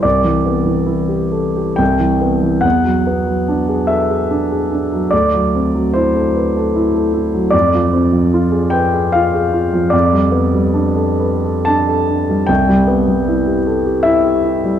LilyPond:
\new Staff \with { instrumentName = "Grand piano" } { \time 3/4 \key c \major \tempo 4 = 74 << { d''2 g''4 | fis''4. e''4. | d''4 c''4 r4 | d''4. g''8 f''4 |
d''2 a''4 | g''2 e''4 | } \\ { c,16 e16 b16 e16 e'16 g'16 a'16 g'16 c,16 e16 b16 e16 | e,16 fis16 b16 fis16 d'16 gis'16 a'16 gis'16 d'16 gis'16 d'16 fis16 | d,16 fis16 c'16 fis16 e'16 a'16 b'16 a'16 e'16 a'16 e'16 fis16 | f,16 f16 c'16 f16 f'16 aes'16 b'16 aes'16 f'16 aes'16 f'16 f16 |
f,16 g16 b16 g16 d'16 a'16 b'16 a'16 d'16 a'16 d'16 g16 | c,16 g16 b16 g16 e'16 g'16 a'16 g'16 e'16 g'16 e'16 g16 | } >> }